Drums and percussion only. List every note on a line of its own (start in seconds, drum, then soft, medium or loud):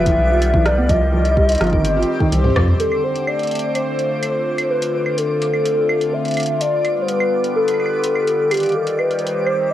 0.06 kick loud
0.06 closed hi-hat medium
0.42 closed hi-hat medium
0.54 kick loud
0.66 cross-stick loud
0.66 closed hi-hat soft
0.89 kick loud
0.89 closed hi-hat medium
1.25 closed hi-hat medium
1.37 kick loud
1.49 closed hi-hat medium
1.52 closed hi-hat medium
1.55 closed hi-hat medium
1.58 cross-stick loud
1.58 closed hi-hat soft
1.64 closed hi-hat soft
1.67 closed hi-hat soft
1.70 kick loud
1.70 closed hi-hat soft
1.85 closed hi-hat loud
2.02 closed hi-hat soft
2.20 kick medium
2.32 closed hi-hat medium
2.32 high tom medium
2.44 mid tom medium
2.44 high tom medium
2.50 mid tom medium
2.56 kick loud
2.56 cross-stick loud
2.56 mid tom medium
2.62 mid tom soft
2.68 mid tom medium
2.80 closed hi-hat medium
2.92 claves soft
3.16 closed hi-hat soft
3.27 claves medium
3.39 closed hi-hat soft
3.43 closed hi-hat soft
3.47 closed hi-hat soft
3.51 closed hi-hat medium
3.55 closed hi-hat medium
3.59 closed hi-hat medium
3.75 closed hi-hat medium
3.75 claves soft
3.99 closed hi-hat soft
4.23 closed hi-hat medium
4.23 claves soft
4.58 closed hi-hat soft
4.58 claves medium
4.82 closed hi-hat medium
5.06 claves soft
5.18 closed hi-hat medium
5.42 closed hi-hat soft
5.54 claves soft
5.66 closed hi-hat medium
5.89 claves medium
6.01 closed hi-hat soft
6.25 closed hi-hat soft
6.28 closed hi-hat soft
6.31 closed hi-hat soft
6.34 closed hi-hat soft
6.37 closed hi-hat soft
6.37 claves soft
6.40 closed hi-hat medium
6.43 closed hi-hat medium
6.46 closed hi-hat medium
6.61 closed hi-hat medium
6.85 closed hi-hat soft
6.85 claves soft
7.08 closed hi-hat medium
7.20 claves medium
7.44 closed hi-hat soft
7.68 closed hi-hat medium
7.68 claves soft
7.74 claves soft
7.80 claves soft
7.86 claves soft
8.04 closed hi-hat medium
8.16 claves soft
8.28 closed hi-hat soft
8.51 closed hi-hat medium
8.51 claves medium
8.54 closed hi-hat medium
8.57 closed hi-hat medium
8.60 closed hi-hat soft
8.63 closed hi-hat soft
8.66 closed hi-hat soft
8.69 closed hi-hat soft
8.72 closed hi-hat soft
8.87 closed hi-hat soft
8.99 claves soft
9.11 closed hi-hat soft
9.19 closed hi-hat soft
9.27 closed hi-hat medium
9.46 claves soft